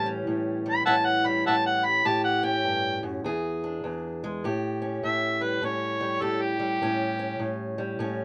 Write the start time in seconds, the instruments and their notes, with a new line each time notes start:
Already playing: steel-string acoustic guitar A2 E3 G3 G4
0.06 steel-string acoustic guitar C#4
0.27 steel-string acoustic guitar A2
0.66 steel-string acoustic guitar G3
0.70 harmonica B5
0.86 steel-string acoustic guitar A2 C#4, harmonica E5 F#5 A5
1.05 harmonica F#5
1.25 steel-string acoustic guitar G3, harmonica B5
1.46 steel-string acoustic guitar A2 G4, harmonica E5 F#5 A5
1.66 harmonica F#5
1.85 harmonica B5
2.05 steel-string acoustic guitar A2 G4, harmonica A5
2.24 harmonica F#5
2.43 steel-string acoustic guitar C#4, harmonica G5
2.64 steel-string acoustic guitar G2
3.03 steel-string acoustic guitar F#2
3.24 steel-string acoustic guitar E2 G#4
3.64 steel-string acoustic guitar D4
3.84 steel-string acoustic guitar E2
4.24 steel-string acoustic guitar G#3
4.44 steel-string acoustic guitar A2 G4
4.82 steel-string acoustic guitar C#4
5.03 steel-string acoustic guitar A2, harmonica E5
5.41 steel-string acoustic guitar G3, harmonica B4
5.62 steel-string acoustic guitar A2 C#4, harmonica C#5
6.01 steel-string acoustic guitar G3
6.22 steel-string acoustic guitar A2 G4, harmonica A4
6.42 harmonica G4
6.59 steel-string acoustic guitar G3
6.82 steel-string acoustic guitar A2 C#4
7.19 steel-string acoustic guitar C#4
7.39 steel-string acoustic guitar A2
7.78 steel-string acoustic guitar G3
7.99 steel-string acoustic guitar A2 C#4